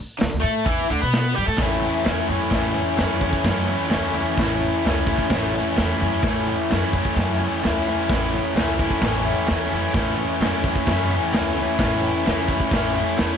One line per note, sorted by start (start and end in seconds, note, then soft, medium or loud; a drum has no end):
0.00 muted upright bass stroke soft
0.19 0.32 D2 medium
0.19 0.29 D3 medium
0.19 snare loud
0.19 open hi-hat medium
0.30 0.43 D2 medium
0.30 0.43 D3 medium
0.40 0.65 A2 medium
0.40 0.64 A3 medium
0.40 0.65 A4 medium
0.65 0.88 E2 medium
0.65 0.88 E3 medium
0.65 0.89 E4 loud
0.65 kick loud
0.65 open hi-hat medium
0.89 1.01 D2 medium
0.89 1.00 D3 medium
0.89 1.01 D4 medium
1.01 1.35 B2 medium
1.01 1.34 B3 medium
1.01 1.35 B4 medium
1.12 snare loud
1.12 open hi-hat medium
1.35 1.47 G2 loud
1.35 1.46 G3 medium
1.35 1.47 G4 loud
1.46 1.58 A2 loud
1.46 1.58 A3 medium
1.46 1.59 A4 medium
1.57 1.88 A1 medium
1.57 2.51 A2 medium
1.57 2.05 E3 medium
1.57 1.85 A3 medium
1.57 kick loud
1.57 snare loud
1.57 floor tom medium
1.61 1.82 C#4 medium
1.61 1.79 E4 loud
1.80 2.07 C#4 medium
1.80 2.09 E4 medium
1.80 floor tom medium
1.85 2.06 A3 medium
2.04 2.21 E2 medium
2.04 2.52 E3 medium
2.04 2.32 A3 medium
2.04 2.29 C#4 medium
2.04 snare loud
2.04 floor tom medium
2.09 2.26 E4 medium
2.27 2.44 F#2 medium
2.27 2.55 C#4 medium
2.27 2.56 E4 medium
2.27 floor tom medium
2.32 2.53 A3 medium
2.51 3.45 A2 medium
2.51 2.81 A2 medium
2.51 2.97 E3 medium
2.51 3.00 A3 medium
2.51 kick loud
2.51 snare loud
2.51 floor tom medium
2.55 3.00 C#4 medium
2.55 3.02 E4 loud
2.74 floor tom medium
2.97 3.29 F#2 medium
2.97 3.46 E3 medium
2.97 3.26 A3 medium
2.97 3.24 C#4 medium
2.97 snare loud
2.97 floor tom medium
3.03 3.21 E4 medium
3.21 3.49 C#4 medium
3.21 3.50 E4 medium
3.21 kick medium
3.21 floor tom medium
3.27 3.47 A3 medium
3.33 kick medium
3.44 3.74 F#2 medium
3.44 4.37 A2 medium
3.44 3.90 E3 loud
3.44 3.72 A3 medium
3.44 kick loud
3.44 snare loud
3.44 floor tom medium
3.49 3.69 C#4 loud
3.49 3.67 E4 medium
3.67 3.93 C#4 medium
3.67 3.94 E4 medium
3.67 floor tom medium
3.73 3.92 A3 medium
3.90 4.39 E3 medium
3.90 4.18 A3 medium
3.90 snare loud
3.90 floor tom medium
3.94 4.23 D2 medium
3.94 4.16 C#4 medium
3.94 4.14 E4 medium
4.14 4.41 C#4 medium
4.14 4.42 E4 medium
4.14 floor tom medium
4.19 4.40 A3 medium
4.37 4.67 A1 medium
4.37 5.31 A2 medium
4.37 4.84 E3 medium
4.37 4.86 A3 medium
4.37 kick loud
4.37 snare loud
4.37 floor tom medium
4.42 4.87 C#4 loud
4.42 4.88 E4 loud
4.61 floor tom medium
4.84 5.15 C#2 medium
4.84 5.32 E3 medium
4.84 5.12 A3 medium
4.84 5.10 C#4 medium
4.84 snare loud
4.84 floor tom medium
4.88 5.08 E4 medium
5.07 5.35 C#4 medium
5.07 5.35 E4 medium
5.07 kick medium
5.07 floor tom medium
5.13 5.34 A3 medium
5.19 kick medium
5.30 5.60 A1 medium
5.30 6.23 A2 loud
5.30 5.79 E3 medium
5.30 kick medium
5.30 snare loud
5.30 floor tom medium
5.34 5.60 A3 loud
5.34 5.58 C#4 loud
5.34 5.55 E4 loud
5.53 5.84 E4 medium
5.53 floor tom medium
5.58 5.80 A3 medium
5.58 5.82 C#4 medium
5.76 5.93 E2 medium
5.76 6.25 E3 medium
5.76 snare loud
5.76 floor tom medium
5.81 6.06 A3 medium
5.81 6.04 C#4 medium
5.81 6.01 E4 medium
6.00 6.16 F#2 medium
6.00 6.28 E4 medium
6.00 floor tom medium
6.05 6.26 A3 medium
6.05 6.27 C#4 medium
6.22 7.15 A2 medium
6.22 6.53 A2 medium
6.22 6.69 E3 medium
6.22 6.72 A3 medium
6.22 kick loud
6.22 snare loud
6.22 floor tom medium
6.27 6.73 C#4 medium
6.27 6.75 E4 medium
6.47 floor tom medium
6.70 7.01 F#2 medium
6.70 7.16 E3 medium
6.70 6.97 A3 medium
6.70 6.96 C#4 medium
6.70 snare loud
6.70 floor tom medium
6.75 6.93 E4 medium
6.93 7.19 C#4 medium
6.93 7.20 E4 medium
6.93 kick medium
6.93 floor tom medium
6.98 7.18 A3 medium
7.05 kick medium
7.16 7.46 F#2 medium
7.16 8.09 A2 medium
7.16 7.62 E3 loud
7.16 7.44 A3 medium
7.16 7.41 C#4 loud
7.16 kick medium
7.16 snare loud
7.16 floor tom medium
7.20 7.39 E4 medium
7.39 7.65 C#4 medium
7.39 7.67 E4 medium
7.39 floor tom medium
7.44 7.64 A3 medium
7.62 7.93 D2 medium
7.62 8.11 E3 medium
7.62 7.90 A3 medium
7.62 7.87 C#4 medium
7.62 snare loud
7.62 floor tom medium
7.67 7.85 E4 medium
7.85 8.12 C#4 medium
7.85 8.14 E4 medium
7.85 floor tom medium
7.90 8.12 A3 medium
8.09 8.39 A1 medium
8.09 9.01 A2 medium
8.09 8.56 E3 medium
8.09 8.58 A3 medium
8.09 8.60 C#4 loud
8.09 kick loud
8.09 snare loud
8.09 floor tom medium
8.14 8.61 E4 loud
8.33 floor tom medium
8.56 8.85 C#2 medium
8.56 9.03 E3 medium
8.56 8.84 A3 medium
8.56 snare loud
8.56 floor tom medium
8.60 8.82 C#4 medium
8.60 8.78 E4 medium
8.79 9.05 C#4 medium
8.79 9.06 E4 medium
8.79 kick medium
8.79 floor tom medium
8.84 9.04 A3 medium
8.90 kick medium
9.01 9.31 A1 medium
9.01 9.93 A2 medium
9.01 9.48 E3 loud
9.01 9.30 A3 medium
9.01 kick medium
9.01 snare loud
9.01 floor tom medium
9.05 9.28 C#4 medium
9.05 9.25 E4 medium
9.24 9.51 C#4 medium
9.24 9.52 E4 medium
9.24 floor tom medium
9.30 9.50 A3 medium
9.47 9.65 E2 medium
9.47 9.95 E3 medium
9.47 9.75 A3 medium
9.47 snare loud
9.47 floor tom medium
9.52 9.73 C#4 medium
9.52 9.70 E4 medium
9.71 9.87 F#2 medium
9.71 9.97 C#4 medium
9.71 9.98 E4 medium
9.71 floor tom medium
9.76 9.97 A3 medium
9.93 10.88 A2 loud
9.93 10.24 A2 medium
9.93 10.40 E3 medium
9.93 kick loud
9.93 snare loud
9.93 floor tom medium
9.97 10.42 A3 loud
9.97 10.44 C#4 loud
9.97 10.45 E4 loud
10.17 floor tom medium
10.41 10.70 F#2 medium
10.41 10.89 E3 medium
10.41 10.70 A3 medium
10.41 10.67 C#4 medium
10.41 snare loud
10.41 floor tom medium
10.46 10.64 E4 medium
10.64 10.92 C#4 medium
10.64 10.93 E4 medium
10.64 kick medium
10.64 floor tom medium
10.70 10.90 A3 medium
10.76 kick medium
10.86 11.17 F#2 medium
10.86 11.79 A2 medium
10.86 11.33 E3 loud
10.86 11.16 A3 medium
10.86 kick loud
10.86 snare loud
10.86 floor tom medium
10.92 11.14 C#4 loud
10.92 11.11 E4 loud
11.10 11.38 E4 medium
11.10 floor tom medium
11.14 11.35 A3 medium
11.14 11.37 C#4 medium
11.33 11.63 D2 medium
11.33 11.81 E3 medium
11.33 11.62 A3 medium
11.33 snare loud
11.33 floor tom medium
11.37 11.59 C#4 medium
11.37 11.57 E4 medium
11.56 11.83 C#4 medium
11.56 11.84 E4 medium
11.56 floor tom medium
11.62 11.82 A3 medium
11.78 12.09 A1 medium
11.78 12.71 A2 medium
11.78 12.26 E3 loud
11.78 12.28 A3 medium
11.78 kick loud
11.78 snare loud
11.78 floor tom medium
11.83 12.30 C#4 loud
11.83 12.31 E4 loud
12.01 floor tom medium
12.26 12.56 C#2 medium
12.26 12.72 E3 medium
12.26 12.53 A3 medium
12.26 snare loud
12.26 floor tom medium
12.30 12.51 C#4 medium
12.30 12.49 E4 medium
12.48 12.75 C#4 medium
12.48 12.76 E4 medium
12.48 kick medium
12.48 floor tom medium
12.53 12.73 A3 medium
12.60 kick medium
12.71 13.01 A1 medium
12.71 13.37 A2 medium
12.71 13.18 E3 loud
12.71 12.99 A3 loud
12.71 kick loud
12.71 snare loud
12.71 floor tom medium
12.75 12.97 C#4 loud
12.75 12.94 E4 loud
12.94 13.22 C#4 medium
12.94 13.24 E4 medium
12.94 floor tom medium
12.99 13.20 A3 medium
13.17 13.34 E2 medium
13.17 13.37 E3 medium
13.17 13.37 A3 medium
13.17 snare loud
13.17 floor tom medium
13.22 13.37 C#4 medium
13.22 13.37 E4 medium